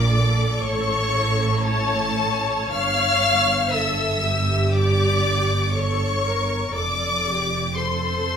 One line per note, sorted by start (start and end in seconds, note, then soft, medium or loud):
0.00 0.62 A#1 medium
0.00 0.61 A#2 medium
0.00 0.12 A#4 medium
0.00 0.61 D5 loud
0.00 0.61 D6 loud
0.12 1.60 A4 loud
0.61 2.72 A1 medium
0.61 2.72 A2 medium
0.61 1.63 C#5 loud
0.61 1.63 C#6 loud
1.63 2.73 A4 loud
1.63 2.16 C#5 loud
1.63 2.73 A5 loud
2.17 3.71 C#5 medium
2.72 6.71 G1 medium
2.72 6.71 G2 medium
2.72 3.73 F5 loud
2.72 3.73 F6 loud
3.73 4.24 A4 medium
3.73 4.76 E5 medium
3.73 4.76 E6 loud
4.25 5.76 G4 medium
4.75 5.75 D5 loud
4.75 5.76 D6 loud
5.74 6.24 A4 medium
5.74 6.74 C#5 loud
5.74 6.75 C#6 loud
6.25 6.75 A#4 medium
6.74 8.37 F1 medium
6.74 8.37 F2 medium
6.74 7.26 A4 medium
6.74 7.76 D5 medium
6.74 7.74 D6 loud
7.26 7.77 G4 medium
7.76 8.37 A4 medium
7.76 8.37 C5 medium
7.76 8.37 C6 medium